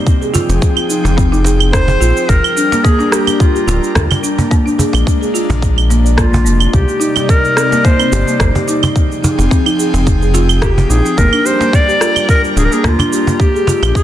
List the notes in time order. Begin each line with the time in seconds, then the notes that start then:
0.07 F3 C4 G#4 G5, kick, cabasa
0.22 G#4, cabasa
0.34 F4, cajon bass, cabasa
0.49 F1, cajon slap, cabasa
0.62 kick, cabasa
0.77 cabasa, claves
0.89 D#4, cabasa
1.04 F1 C4, cajon bass, cajon slap, cabasa
1.17 C4, kick, cabasa
1.32 D#4, cajon slap, cabasa
1.44 G#4, cajon slap, cabasa
1.60 cabasa, claves
1.73 C5, kick, cross-stick, cabasa
1.88 G#4, cajon bass, cabasa
2.01 A#1 F4, cabasa
2.17 cabasa
2.29 G1 G3 D4 A#4, kick, cabasa
2.44 cabasa, claves
2.56 D4, cabasa
2.72 A#3, cajon slap, cabasa
2.84 A#3 G#4, kick, cabasa
2.99 D4, cabasa
3.11 G4, cross-stick, cabasa
3.27 cajon slap, cabasa, claves
3.40 F4, kick, cabasa
3.55 G4, cabasa
3.67 D1 F4, cajon slap, cabasa
3.84 cabasa
3.95 D2, kick, cross-stick, cabasa
4.11 cajon bass, cabasa, claves
4.23 D4, cabasa
4.38 A#3, cajon bass, cabasa
4.51 G#3 A#3 D4, kick, cajon slap, cabasa
4.66 D4, cabasa
4.78 G#4, cajon bass, cabasa
4.93 A#1, cajon slap, cabasa, claves
5.07 kick, cabasa
5.21 G#4, cabasa
5.34 F4, cabasa
5.49 A#1, cajon bass, cajon slap, cabasa
5.62 kick, cabasa
5.78 cajon slap, cabasa, claves
5.90 A#3, cajon slap, cabasa
6.04 D5, cabasa
6.17 A#1 A#3 F4, kick, cross-stick, cabasa
6.32 A#3, cajon bass, cabasa
6.45 F1 A#3, cabasa
6.60 cabasa, claves
6.73 C2 C3 G3 D#4 G4 D5, kick, cabasa
6.88 G4, cabasa
7.00 D#4, cabasa
7.16 cajon slap, cabasa, claves
7.29 A#4, kick, cabasa
7.45 cabasa
7.56 C4, cross-stick, cabasa
7.71 A#3, cajon slap, cabasa
7.84 A#3 C5, kick, cabasa
7.99 C4, cabasa, claves
8.12 G1 G4, cajon slap, cabasa
8.27 A#3, cabasa
8.40 G1, kick, cross-stick, cabasa
8.55 G4, cajon bass, cabasa
8.68 D#4, cabasa
8.83 cajon bass, cabasa, claves
8.95 F3 C4 G#4 G5, kick, cajon slap, cabasa
9.12 cabasa
9.23 D#4, cajon bass, cabasa
9.38 F1 C4, cajon slap, cabasa
9.51 C4, kick, cabasa
9.66 D#4, cabasa, claves
9.79 G#4, cabasa
9.94 F1 C4, cajon bass, cajon slap, cabasa
10.07 kick, cabasa
10.21 G#4, cajon slap, cabasa
10.34 F4, cajon slap, cabasa
10.49 cabasa, claves
10.62 G4, kick, cross-stick, cabasa
10.78 cajon bass, cabasa
10.90 A#1 D#4 G#4, cabasa
11.05 C4, cabasa
11.17 G1 G3 A#3 D4 A#4, kick, cabasa
11.33 D4, cabasa, claves
11.45 G4 C5, cabasa
11.60 A#3, cajon slap, cabasa
11.73 D5, kick, cabasa
11.88 G4, cabasa
12.00 F4, cross-stick, cabasa
12.16 cajon slap, cabasa, claves
12.29 A#4, kick, cabasa
12.44 cabasa
12.56 D1 D4 G#4, cajon slap, cabasa
12.65 A#4
12.72 A#3 G#4, cabasa
12.84 D2 A#3 F4, kick, cross-stick, cabasa
12.99 D4, cajon bass, cabasa, claves
13.12 G4, cabasa
13.27 A#3, cajon bass, cabasa
13.40 G#3 A#3 G4, kick, cajon slap, cabasa
13.55 G#4, cabasa
13.67 F4, cajon bass, cabasa
13.82 A#1, cajon slap, cabasa, claves
13.95 G#4, kick, cabasa